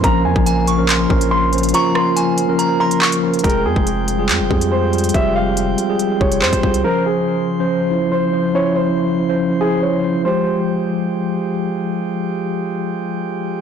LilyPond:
<<
  \new Staff \with { instrumentName = "Synth bell" } { \time 4/4 \key f \minor \tempo 4 = 141 r4 aes''8 des'''8 c'''4 r4 | bes''4 aes''4 bes''8 c'''8 r4 | r1 | r1 |
r1 | r1 | r1 | r1 | }
  \new Staff \with { instrumentName = "Grand piano" } { \time 4/4 \key f \minor bes''8 aes''2~ aes''8 c'''4 | des'''8 c'''4. r8 bes''8 des'''8 r8 | bes'8 aes'2~ aes'8 c''4 | e''8 f''2 des''8 c''4 |
bes'8 aes'2~ aes'8 c''4 | des''8 c''4. r8 aes'8 des''8 r8 | c''2. r4 | r1 | }
  \new Staff \with { instrumentName = "Tine electric piano" } { \time 4/4 \key f \minor <f des' bes'>4. r16 <f des' bes'>8. <f des' bes'>4 <f des' c''>8 | <f des' f'>4. r16 <f des' bes'>8. <f des' bes'>4 <f des' bes'>8 | <aes f' aes'>4. r16 <g f' aes'>8. <f' g' aes'>4 <g f' aes'>8 | <g f' g'>4. r16 <g f' aes'>8. <f' g' aes'>4 <g f' aes'>8 |
<f des' c''>4. r16 <f des' c''>8. <f des' e'>4 <f des' c''>8 | <f des' e'>4. r16 <f des' c''>8. <f des' e'>4 <f des' c''>8 | <f aes g'>1~ | <f aes g'>1 | }
  \new Staff \with { instrumentName = "Pipe organ" } { \time 4/4 \key f \minor <des bes f'>1~ | <des bes f'>1 | <f c' g''>1~ | <f c' g''>1 |
<des f c''>1~ | <des f c''>1 | <f aes g'>1~ | <f aes g'>1 | }
  \new Staff \with { instrumentName = "808-style bass" } { \clef bass \time 4/4 \key f \minor bes,,8 f,16 bes,,4.~ bes,,16 bes,,4. | r1 | f,,8 f,16 f,,4~ f,,16 f,16 f,,16 f,4. | f,,4. r4 f,,8 f,16 c,16 c,8 |
r1 | r1 | r1 | r1 | }
  \new DrumStaff \with { instrumentName = "Drums" } \drummode { \time 4/4 <hh bd>8. bd16 hh8 hh8 <hc hh>8 bd16 hh16 r8 hh32 hh32 hh32 hh32 | hh8 ss8 hh8 hh8 hh8. hh16 hc16 hh8 hh32 hh32 | <hh bd>32 hh8 r32 bd16 hh8 hh8 <hc hh>8 bd16 hh16 r8 hh32 hh32 hh32 hh32 | <hh bd>4 hh8 hh8 hh8 bd16 hh16 hc16 <hh bd>16 bd16 hh16 |
r4 r4 r4 r4 | r4 r4 r4 r4 | r4 r4 r4 r4 | r4 r4 r4 r4 | }
>>